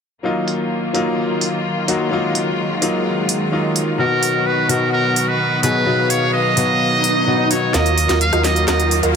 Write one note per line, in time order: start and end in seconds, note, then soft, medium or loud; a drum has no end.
0.23 7.70 D#3 medium
0.23 0.91 F#3 medium
0.23 7.70 F#3 medium
0.23 0.92 A#3 medium
0.23 2.10 A#3 medium
0.23 0.92 D#4 medium
0.23 3.95 F4 medium
0.23 0.92 F4 medium
0.48 open hi-hat loud
0.93 1.85 F#3 medium
0.93 1.85 A#3 medium
0.93 1.86 D#4 medium
0.93 1.86 F4 medium
0.93 open hi-hat medium
1.41 open hi-hat medium
1.88 2.09 F#3 medium
1.88 2.09 A#3 medium
1.88 2.09 D#4 medium
1.88 2.09 F#4 medium
1.88 open hi-hat loud
2.10 2.79 F#3 medium
2.10 3.97 G#3 medium
2.10 2.79 A#3 medium
2.10 2.79 D#4 medium
2.10 2.80 F4 medium
2.35 open hi-hat loud
2.81 2.90 F#3 medium
2.81 2.90 A#3 medium
2.81 2.90 D#4 medium
2.81 2.90 F4 medium
2.81 open hi-hat medium
3.29 open hi-hat loud
3.52 3.96 F#3 medium
3.52 3.96 A#3 medium
3.52 3.96 D#4 medium
3.52 3.97 F4 medium
3.76 open hi-hat loud
3.98 4.66 B2 medium
3.98 4.66 F#3 medium
3.98 4.67 B3 medium
3.98 7.70 B3 medium
3.98 4.67 D#4 medium
3.98 5.85 F#4 medium
3.98 4.67 F#4 medium
3.98 4.48 A#4 medium
4.23 open hi-hat loud
4.46 4.71 B4 medium
4.68 5.60 B2 medium
4.68 5.60 F#3 medium
4.68 5.60 B3 medium
4.68 5.61 D#4 medium
4.68 5.61 F#4 medium
4.68 4.92 A#4 medium
4.68 open hi-hat loud
4.93 5.30 A#4 medium
5.16 open hi-hat loud
5.28 5.63 B4 medium
5.63 5.84 B2 medium
5.63 5.84 F#3 medium
5.63 5.84 B3 medium
5.63 5.84 D#4 medium
5.63 5.84 G#4 medium
5.63 6.12 B4 medium
5.63 open hi-hat loud
5.86 6.54 B2 medium
5.86 6.54 F#3 medium
5.86 6.54 B3 medium
5.86 6.54 D#4 medium
5.86 6.55 F#4 medium
5.86 7.72 F5 medium
6.10 6.33 C#5 medium
6.10 open hi-hat loud
6.34 7.47 D#5 loud
6.56 6.65 B2 medium
6.56 6.65 F#3 medium
6.56 6.65 B3 medium
6.56 6.65 D#4 medium
6.56 6.65 F#4 medium
6.56 open hi-hat loud
6.80 swell medium
7.04 open hi-hat loud
7.27 7.35 B2 medium
7.27 7.35 F#3 medium
7.27 7.35 B3 medium
7.27 7.35 D#4 medium
7.27 7.36 F#4 medium
7.50 7.71 F#3 medium
7.50 7.71 B3 medium
7.50 7.71 D#4 medium
7.50 7.72 F#4 medium
7.50 7.76 C#5 medium
7.50 open hi-hat loud
7.73 8.07 D#2 medium
7.73 9.16 D#3 medium
7.73 8.41 F#3 medium
7.73 9.16 F#3 medium
7.73 8.41 A#3 medium
7.73 9.16 A#3 medium
7.73 8.42 D#4 medium
7.73 7.95 F4 medium
7.73 8.42 F4 medium
7.73 7.95 F#4 medium
7.73 7.95 A#4 medium
7.73 8.20 D#5 loud
7.73 7.95 D#5 medium
7.73 7.95 F5 medium
7.73 snare soft
7.73 closed hi-hat medium
7.73 riser medium
7.86 closed hi-hat soft
7.98 open hi-hat loud
8.09 8.30 D#2 loud
8.09 8.23 F4 medium
8.09 8.23 F#4 medium
8.09 8.23 A#4 medium
8.09 8.23 D#5 medium
8.09 8.23 F5 loud
8.09 snare soft
8.09 closed hi-hat soft
8.21 8.46 F5 loud
8.21 closed hi-hat medium
8.33 8.66 D#2 medium
8.33 8.65 F4 medium
8.33 8.65 F#4 medium
8.33 8.65 A#4 medium
8.33 8.65 D#5 medium
8.33 8.65 F5 loud
8.33 cross-stick medium
8.33 closed hi-hat soft
8.43 9.16 F#3 medium
8.43 9.16 A#3 medium
8.43 9.16 D#4 medium
8.43 8.67 D#5 medium
8.43 snare soft
8.43 open hi-hat loud
8.56 closed hi-hat soft
8.68 9.01 D#2 medium
8.68 9.00 F4 medium
8.68 9.00 F#4 medium
8.68 9.00 A#4 medium
8.68 9.00 D#5 medium
8.68 9.01 D#5 medium
8.68 9.00 F#5 medium
8.68 cross-stick medium
8.68 snare soft
8.68 closed hi-hat medium
8.80 closed hi-hat soft
8.91 open hi-hat loud
9.03 9.16 D#2 loud
9.03 9.16 F4 medium
9.03 9.16 F#4 medium
9.03 9.16 A#4 medium
9.03 9.16 D#5 medium
9.03 9.16 F5 loud
9.03 closed hi-hat soft